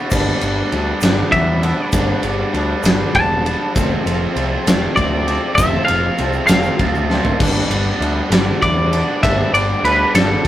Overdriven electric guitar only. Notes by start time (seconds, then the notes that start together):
Already playing: D4 A4
0.11 G3 B3 D4 B4
0.42 B3 D4 B4
0.73 G3 B3 D4 B4
1.02 B3 D4 B4
1.31 G3 B3 D4 B4
1.62 B3 D4 B4
1.93 G3 B3 D4 B4
2.23 B3 D4 B4
2.54 G3 B3 D4 B4
2.84 B3 D4 B4
3.14 G3 B3 D4 B4
3.44 B3 D4 B4
3.74 F3 A3 C4 F4 A4
4.06 C4 F4 A4
4.34 A3 C4 F4 A4
4.66 C4 F4 A4
4.97 A3 C4 F4 A4
5.27 C4 F4 A4
5.56 F3 A3 C4 F4 A4
5.87 C4 F4 A4
6.18 A3 C4 F4 A4
6.48 C4 F4 A4
6.78 A3 C4 F4 A4
7.09 C4 F4 A4
7.38 G3 B3 D4 B4
7.70 B3 D4 B4
7.99 G3 B3 D4 B4
8.30 B3 D4 B4
8.62 G3 B3 D4 B4
8.91 B3 D4 B4
9.22 G3 B3 D4 B4
9.51 B3 D4 B4
9.83 G3 B3 D4 B4
10.14 B3 D4 B4
10.43 G3 B3 D4